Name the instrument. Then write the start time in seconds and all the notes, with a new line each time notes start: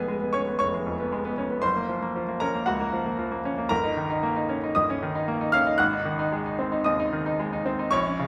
grand piano
Already playing: F1 G#3 B3 G#4 G#5
0.08 G#3
0.21 B3
0.33 C#4 C#5 C#6
0.47 B3
0.59 F1 C#5 C#6
0.74 G#3
0.87 F2
1.00 B3
1.12 G#3
1.25 B3
1.38 C#4
1.51 B3
1.62 F#1 C5 C6
1.76 A#3
1.89 F3
2.02 A#3
2.16 F3
2.28 A#3
2.40 C#4 A#4 A#5
2.55 A#3
2.66 C#2 F#4 F#5
2.80 A#3
2.93 F3
3.06 A#3
3.19 F3
3.32 A#3
3.45 C#4
3.58 A#3
3.69 G1 A#4 A#5
3.84 D#4
3.97 D#3
4.10 D#4
4.23 A#3
4.36 D#4
4.49 C#4
4.64 D#4
4.75 G1 D#5 D#6
4.90 C#4
5.03 D#3
5.15 D#4
5.28 A#3
5.41 D#4
5.52 C#4 F5 F6
5.67 D#4
5.78 G#1 F#5 F#6
5.93 D#4
6.05 D#3
6.19 D#4
6.32 G#3
6.46 D#4
6.59 C4
6.72 D#4
6.84 D#2 D#5 D#6
7.00 D#4
7.13 D#3
7.26 D#4
7.40 G#3
7.53 D#4
7.66 C4
7.79 D#4
7.91 A#1 C#5 C#6
8.06 C#4
8.19 C#3